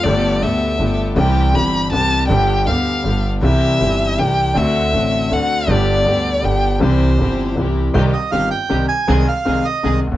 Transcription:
<<
  \new Staff \with { instrumentName = "Violin" } { \time 3/4 \key c \major \tempo 4 = 160 d''4 e''4. r8 | g''4 b''4 a''4 | g''4 f''4. r8 | e''2 g''4 |
e''2 fis''4 | d''2 g''4 | c''2 r4 | \key c \minor r2. |
r2. | }
  \new Staff \with { instrumentName = "Bandoneon" } { \time 3/4 \key c \major r2. | r2. | r2. | r2. |
r2. | r2. | r2. | \key c \minor c''8 ees''8 f''8 g''4 aes''8~ |
aes''8 f''4 ees''4 r8 | }
  \new Staff \with { instrumentName = "String section" } { \time 3/4 \key c \major <b g' a'>4 <b g' a'>4 <b g' a'>4 | <c' e' g'>4 <c' e' g'>4 <c' e' g'>4 | <b d' g'>4 <b d' g'>4 <b d' g'>4 | <c' e' g'>4 <c' e' g'>4 <c' e' g'>4 |
<c' d' fis'>4 <c' d' fis'>4 <c' d' fis'>4 | <b d' g'>4 <b d' g'>4 <b d' g'>4 | <c' e' g'>4 <c' e' g'>4 <c' e' g'>4 | \key c \minor <c' ees' g'>8 r8 <c' ees' g'>8 r8 <c' ees' g'>8 r8 |
<c' ees' aes'>8 r8 <c' ees' aes'>8 r8 <c' ees' aes'>8 r8 | }
  \new Staff \with { instrumentName = "Grand piano" } { \clef bass \time 3/4 \key c \major <g,, g, d a b g'>4 <d, d a b g'>4 <g,, g, d a b g'>4 | <c, c e g c' g'>4 <g,, g, e g c' g'>4 <c, c e g c' g'>4 | <g,, g, d g b g'>4 <d, d g b g'>4 <g,, g, d g b g'>4 | <c, c e g c' g'>4 <g,, g, e g c' g'>4 <c, c e g c' g'>4 |
<d, d a c' fis'>4 <a,, a, d a c' fis'>4 <d, d a c' fis'>4 | <g,, g, d g b g'>4 <d, d g b g'>4 <g,, g, d g b g'>4 | <c, c e g c' g'>4 <g,, g, e g c' g'>4 <c, c e g c' g'>4 | \key c \minor <c, c ees g c' g'>8 r8 <g,, g, ees g c' g'>8 r8 <c, c ees g c' g'>8 r8 |
<c, c ees aes c' aes'>8 r8 <c, c ees aes c' aes'>8 r8 <c, c ees aes c' aes'>8 r32 d,32 ees,32 r32 | }
  \new Staff \with { instrumentName = "Upright bass" } { \clef bass \time 3/4 \key c \major g,,4 d,4 g,,4 | c,4 g,,4 c,4 | g,,4 d,4 g,,4 | c,4 g,,4 c,4 |
d,4 a,,4 d,4 | g,,4 d,4 g,,4 | c,4 g,,4 c,4 | \key c \minor c,16. r8 r32 g,,16. r8 r32 c,16. r8 r32 |
c,16. r8 r32 c,16. r8 r32 c,16. r16 d,32 ees,32 r32 | }
>>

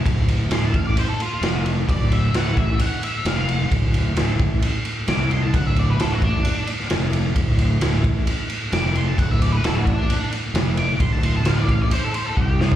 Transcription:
<<
  \new Staff \with { instrumentName = "Lead electric guitar" } { \time 4/4 \key a \dorian \tempo 4 = 132 << { r1 | r1 | r1 | r1 |
r1 | r1 | r2. g''4 | } \\ { r4 c'''16 a''16 f''16 d''16 c''16 a'16 f'4 r8 | d''8 e''8 fis''8 e''8 fis''8 e''8 f''4 | r2. d'''8 c'''16 a''16 | fis''16 e''16 d''16 b'16 a'16 fis'16 d'4 r4. |
r2. d'''8 c'''16 a''16 | fis''16 e''16 d''16 b'16 a'16 fis'16 d'4 r4 d'''8 | c'''16 a''16 c'''16 a''16 f''16 d''16 f''16 d''16 c''16 a'16 c''16 a'16 gis'16 g'16 a'8 | } >> }
  \new Staff \with { instrumentName = "Fingered electric bass" } { \clef bass \time 4/4 \key a \dorian d,,4 d,,8 a,,8 r4 f,,4 | d,,4 d,,8 a,,8 r4 f,,4 | d,,4 d,,8 a,,8 r4 c,4 | d,,4 d,,8 a,,8 r4 f,,4 |
d,,4 d,,8 a,,8 r4 f,,4 | d,,4 d,,8 a,,8 r4 f,,4 | d,,4 d,,8 a,,8 r4 c,4 | }
  \new DrumStaff \with { instrumentName = "Drums" } \drummode { \time 4/4 <bd cymr>8 cymr8 <cymr sn>8 <bd cymr>8 cymr8 cymr8 <cymr sn>8 cymr8 | <bd cymr>8 cymr8 <cymr sn>8 <bd cymr>8 cymr8 cymr8 <cymr sn>8 cymr8 | <bd cymr>8 cymr8 <cymr sn>8 <bd cymr>8 cymr8 cymr8 <cymr sn>8 cymr8 | <bd cymr>8 cymr8 <cymr sn>8 <bd cymr>8 cymr8 cymr16 sn16 <cymr sn>8 cymr8 |
<bd cymr>8 cymr8 <cymr sn>16 sn16 <bd cymr>8 cymr8 cymr8 <cymr sn>8 cymr8 | <bd cymr>8 cymr8 <cymr sn>8 <bd cymr>8 cymr8 cymr8 <cymr sn>8 cymr8 | <bd cymr>8 cymr8 <cymr sn>8 <bd cymr>8 cymr8 cymr8 bd8 sn16 tomfh16 | }
>>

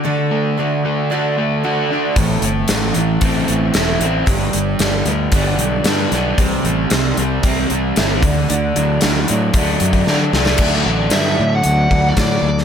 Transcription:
<<
  \new Staff \with { instrumentName = "Lead electric guitar" } { \time 4/4 \key d \mixolydian \tempo 4 = 114 r1 | r1 | r1 | r1 |
r1 | r4 e''8. fis''4 d''16 d''8. r16 | }
  \new Staff \with { instrumentName = "Steel-string acoustic guitar" } { \time 4/4 \key d \mixolydian <d a d' fis' a'>4 <a d' fis' a'>4 <d a d' fis' a'>4 <a d' fis' a'>8 <d' fis' a'>8 | <a, e a c' e' a'>4 <a c' e' a'>8 <a c' e' a'>8 <a, e a c' e' a'>4 <a c' e' a'>8 <a c' e' a'>8 | <g d' g' b'>4 <g d' g' b'>8 <d' g' b'>8 <g d' g' b'>4 <g d' g' b'>8 <d' g' b'>8 | <c e g c' g' c''>4 <g c' g' c''>4 <c e g c' g' c''>4 <g c' g' c''>8 <d' fis' d''>8 |
<d a d' fis' d''>4 <a d' fis' d''>8 <d' fis' d''>8 <d a d' fis' d''>4 <a d' fis' d''>8 <d' fis' d''>8 | <d a d' fis' d''>8 <d' fis' d''>8 <d a d' fis' d''>4 <a d' fis' d''>8 <d' fis' d''>8 <d a d' fis' d''>8 <d' fis' d''>8 | }
  \new Staff \with { instrumentName = "Overdriven electric guitar" } { \clef bass \time 4/4 \key d \mixolydian d8 a8 d8 a8 d'8 a8 fis'8 d'8 | a,8 a8 e8 a8 c'8 a8 e'8 c'8 | g,8 g8 d8 g8 b8 g8 d'8 b8 | c8 g8 c8 g8 c'8 g8 e'8 d8 |
d8 fis8 d8 fis8 a8 fis8 d'8 a8 | <d fis a d'>1 | }
  \new Staff \with { instrumentName = "Fingered electric bass" } { \clef bass \time 4/4 \key d \mixolydian r1 | a,,8 g,,8 a,,8 a,,8 a,,8 a,,8 e,,8 a,,8 | g,,8 g,,8 g,,8 d,8 g,,8 b,,8 g,8 b,,8 | c,8 a,,8 c,8 c,8 c,8 c,8 g,,8 d,8 |
d,8 d,8 d,8 a,8 d,8 fis,8 d8 c,8 | d,8 a,,8 g,8 a,8 d,8 d,8 a,8 d,8 | }
  \new DrumStaff \with { instrumentName = "Drums" } \drummode { \time 4/4 r4 r4 r4 r4 | <hh bd>8 hh8 <hh sn>8 hh8 <hh bd>8 hh8 <hh sn>8 hh8 | <hh bd>8 hh8 <hh sn>8 hh8 <hh bd>8 hh8 <hh sn>8 <hh sn>8 | <hh bd>8 hh8 <hh sn>8 hh8 <hh bd>8 hh8 <hh sn>8 <hh bd>8 |
hh8 hh8 <hh sn>8 hh8 <hh bd>8 hh16 bd16 sn8 sn16 sn16 | <cymc bd>4 <hh sn>4 hh8 bd8 <hh bd sn>8. sn16 | }
>>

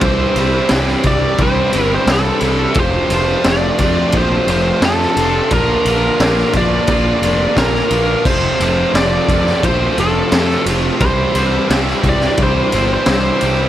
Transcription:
<<
  \new Staff \with { instrumentName = "Lead electric guitar" } { \time 4/4 \key c \mixolydian \tempo 4 = 88 c''4 r8 d''8 c''8. c''16 a'4 | c''4 d''4 c''8 c''8 a'4 | bes'4. d''4. bes'4 | c''4 d''4 c''8 a'4 r8 |
c''4 r8 d''8 c''8. c''16 c''4 | }
  \new Staff \with { instrumentName = "String machine" } { \time 4/4 \key c \mixolydian <g d' e' c''>1 | <a c' f' c''>1 | \tuplet 3/2 { <b ees' fis'>8 <bes d' f' d''>4~ } <bes d' f' d''>2. | <a c' f' c''>1 |
<g d' e' c''>1 | }
  \new Staff \with { instrumentName = "Overdriven electric guitar" } { \clef bass \time 4/4 \key c \mixolydian <c e g c' e'>8 <c e g c' e'>8 <c e g c' e'>8 <c e g c' e'>8 <c e g c' e'>8 <c e g c' e'>8 <c e g c' e'>8 <c e g c' e'>8 | <f, c f a c' f'>8 <f, c f a c' f'>8 <f, c f a c' f'>8 <f, c f a c' f'>8 <f, c f a c' f'>8 <f, c f a c' f'>8 <f, c f a c' f'>8 <f, c f a c' f'>8 | <bes, d bes d' f'>8 <bes, d bes d' f'>8 <bes, d bes d' f'>8 <bes, d bes d' f'>8 <bes, d bes d' f'>8 <bes, d bes d' f'>8 <bes, d bes d' f'>8 <bes, d bes d' f'>8 | <f, c f a c' f'>8 <f, c f a c' f'>8 <f, c f a c' f'>8 <f, c f a c' f'>8 <f, c f a c' f'>8 <f, c f a c' f'>8 <f, c f a c' f'>8 <f, c f a c' f'>8 |
<c e g c' e'>8 <c e g c' e'>8 <c e g c' e'>8 <c e g c' e'>8 <c e g c' e'>8 <c e g c' e'>8 <c e g c' e'>8 <c e g c' e'>8 | }
  \new Staff \with { instrumentName = "Picked electric bass" } { \clef bass \time 4/4 \key c \mixolydian c,8 c,8 c,8 c,8 c,8 g,,8 c,8 c,8 | f,,8 f,,8 f,,8 f,8 bes,,8 f,,8 f,8 f,,8 | bes,,8 bes,,8 bes,,8 bes,,8 bes,,8 f,,8 bes,,8 bes,,8 | f,,8 f,,8 f,,8 f,8 bes,,8 f,,8 f,8 f,,8 |
c,8 c,8 c,8 c,8 c,8 g,,8 c,8 c,8 | }
  \new DrumStaff \with { instrumentName = "Drums" } \drummode { \time 4/4 <bd cymr>8 cymr8 <cymr sn>16 sn16 <bd cymr>8 <bd cymr>8 cymr8 <cymr sn>8 cymr8 | <bd cymr>8 cymr8 <cymr sn>8 <bd cymr>8 <bd cymr>8 cymr8 <cymr sn>16 sn16 cymr8 | <bd cymr>8 cymr8 <cymr sn>16 sn16 <bd cymr>8 <bd cymr>8 cymr8 <bd cymr sn>16 sn16 cymr8 | <cymc bd>8 cymr8 <cymr sn>8 <bd cymr>16 sn16 <bd cymr>8 cymr8 <cymr sn>16 sn16 cymr8 |
<bd cymr>8 cymr8 <cymr sn>16 sn16 <bd cymr>16 sn16 <bd cymr>8 cymr8 <cymr sn>8 cymr8 | }
>>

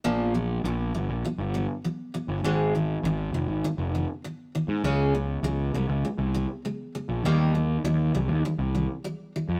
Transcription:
<<
  \new Staff \with { instrumentName = "Steel-string acoustic guitar" } { \clef bass \time 4/4 \key bes \dorian \tempo 4 = 100 <bes, f bes>8 <bes, f>8 <bes, f>8 <bes, f>8 <bes, f>8 <bes, f>8 <bes, f>8 <bes, f>8 | <aes, ees aes>8 <aes, ees>8 <aes, ees>8 <aes, ees>8 <aes, ees>8 <aes, ees>8 <aes, ees>8 <aes, ees>8 | <des aes des'>8 <des aes>8 <des aes>8 <des aes>8 <des aes>8 <des aes>8 <des aes>8 <des aes>8 | <ees g bes>8 <ees g>8 <ees g>8 <ees g>8 <ees g>8 <ees g>8 <ees g>8 <ees g>8 | }
  \new Staff \with { instrumentName = "Picked electric bass" } { \clef bass \time 4/4 \key bes \dorian bes,,4 bes,,8 g,,16 bes,,16 r16 g,,8 r4 g,,16 | aes,,4 aes,,8 f,,16 aes,,16 r16 f,,8 r4 aes,16 | des,4 des,8 c,16 des,16 r16 c,8 r4 bes,,16 | ees,4 ees,8 c,16 ees,16 r16 c,8 r4 f,16 | }
>>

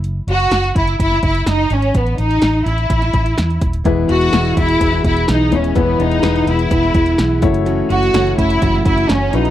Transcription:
<<
  \new Staff \with { instrumentName = "Grand piano" } { \time 4/4 \key e \major \tempo 4 = 126 r1 | r1 | <gis b e' b'>4 <gis b e' fis'>2 r8 <gis b e' cis''>8 | <gis b e' b'>4 <gis b e' b'>2 r8 <a e' fis' cis''>8~ |
<a e' fis' cis''>4 <a e' fis' cis''>2 r8 <a e' fis' b'>8 | }
  \new Staff \with { instrumentName = "Grand piano" } { \clef bass \time 4/4 \key e \major r1 | r1 | e4. r2 r8 | e4. r2 r8 |
r1 | }
  \new Staff \with { instrumentName = "Violin section" } { \time 4/4 \key e \major r8 fis'4 e'8 e'8 e'8 dis'8 cis'8 | b8 dis'4 e'2 r8 | r8 fis'4 e'4 e'8 dis'8 cis'8 | b8 dis'4 e'2 r8 |
r8 fis'4 e'4 e'8 cis'8 dis'8 | }
  \new Staff \with { instrumentName = "Steel-string acoustic guitar" } { \time 4/4 \key e \major r1 | r1 | <e b e' gis'>8 <b e' gis'>8 <e b e' gis'>8 <b e' gis'>8 <e b e' gis'>8 <b e' gis'>8 <e b e' gis'>8 <b e' gis'>8 | <e b e' gis'>8 <b e' gis'>8 <e b e' gis'>8 <b e' gis'>8 <e b e' gis'>8 <b e' gis'>8 <e b e' gis'>8 <e a cis' fis'>8 |
<fis, cis e a cis' fis'>8 <e a cis' fis'>8 <e a cis' fis'>8 <e a cis' fis'>8 <fis, cis e a cis' fis'>8 <e a cis' fis'>8 <e a cis' fis'>8 <e a cis' fis'>8 | }
  \new Staff \with { instrumentName = "Fingered electric bass" } { \clef bass \time 4/4 \key e \major fis,,8 fis,,8 fis,,8 fis,,8 fis,,8 fis,,8 fis,,8 gis,,8 | a,,8 a,,8 a,,8 a,,8 a,,8 a,,8 e,8 dis,,8 | e,,8 e,,8 e,,8 e,,8 e,,8 e,,8 b,,8 dis,,8 | e,,8 e,,8 e,,8 e,,8 e,,8 e,,8 b,,8 fis,,8~ |
fis,,8 fis,,8 fis,,8 fis,,8 fis,,8 fis,,8 fis,,8 ais,,8 | }
  \new DrumStaff \with { instrumentName = "Drums" } \drummode { \time 4/4 hh8 hh16 hh16 <hh sn>16 hh16 <hh bd>16 hh16 <hh bd>16 sn16 <hh bd>16 hh16 <hh sn>8 hh16 hh16 | <hh bd>16 hh16 hh16 hh16 <hh sn>8 hh16 hh16 <hh bd>16 <hh sn>16 <hh bd>16 hh16 <hh sn>16 hh16 <hh bd>16 hh16 | <hh bd>8 hh16 hh16 <hh sn>16 hh16 <hh bd>16 hh16 <hh bd>16 sn16 <hh bd>16 hh16 <hh sn>8 hh16 hh16 | <hh bd>8 hh16 hh16 <hh sn>16 hh16 hh16 hh16 <hh bd>16 sn16 <hh bd>16 hh16 <hh sn>8 <hh bd>16 hh16 |
hh8 hh16 hh16 <hh sn>16 hh16 <hh bd>16 hh16 <hh bd>16 sn16 <hh bd>16 hh16 <hh sn>8 hh16 hh16 | }
>>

